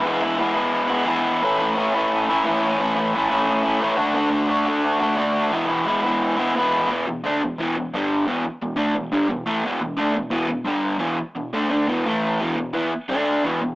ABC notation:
X:1
M:4/4
L:1/8
Q:1/4=175
K:Emix
V:1 name="Overdriven electric guitar" clef=bass
[E,G,B,E] [G,B,E] [E,G,B,E] [G,B,E]2 [G,B,E] [E,G,B,E]2 | [A,,E,A,CE] [A,CE] [E,A,CE] [A,CE]2 [A,CE] [A,,E,A,CE]2 | [A,,E,A,CE] [A,CE] [E,A,CE] [A,CE]2 [A,CE] [A,,E,A,CE] [D,A,DF] | [D,A,DF] [A,DF] [D,A,DF] [A,DF]2 [A,DF] [D,A,DF]2 |
[E,,B,,E,G,B,E] [E,G,B,E] [E,G,B,E] [E,G,B,E]2 [E,G,B,E] [E,,B,,E,G,B,E]2 | [E,,B,,E,] [E,,B,,] [D,A,D] [E,,B,,] [E,,B,,E,] [E,,B,,] [=G,,D,=G,]2 | [E,,B,,E,] z [E,,B,,] [D,A,D] [E,,B,,] [=G,,D,=G,] [E,,B,,] [A,,E,A,] | [E,,B,,E,] [E,,B,,] [D,A,D] [E,,B,,] [E,,B,,E,] [E,,B,,] [=G,,D,=G,]2 |
[E,,B,,E,] z [E,,B,,] [D,A,D] [D,A,D] [E,,B,,E,] [A,,E,A,]2 | [E,,B,,E,] [E,,B,,] [E,B,E] z [D,A,D]2 [E,,B,,E,] [E,,B,,] |]